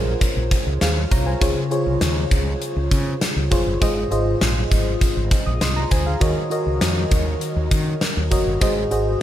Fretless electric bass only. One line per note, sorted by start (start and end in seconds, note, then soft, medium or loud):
0.00 0.14 A#1 medium
0.36 0.48 A#1 medium
0.66 0.78 C#2 medium
0.82 1.04 D#2 medium
1.12 1.34 C2 medium
1.42 1.53 C#2 medium
1.86 1.98 C2 medium
2.01 2.24 D#2 medium
2.31 2.54 C#2 medium
2.76 2.88 C#2 medium
2.91 3.14 C#3 medium
3.36 3.48 C#2 medium
3.52 3.63 F#1 medium
3.67 3.78 G1 medium
3.82 4.04 G#1 medium
4.11 4.34 G#1 medium
4.42 4.64 A#1 medium
4.71 4.94 G#1 medium
5.17 5.28 G#1 medium
5.47 5.58 A#1 medium
5.61 5.84 C2 medium
5.91 6.14 D2 medium
6.21 6.33 D#2 loud
6.66 6.78 C#2 medium
6.82 7.04 F2 medium
7.12 7.34 D#2 medium
7.56 7.68 D#2 medium
7.71 7.94 D#3 medium
8.17 8.28 D#2 medium
8.32 8.43 F#1 medium
8.47 8.58 G1 medium
8.62 8.84 G#1 loud
8.92 9.14 G#1 medium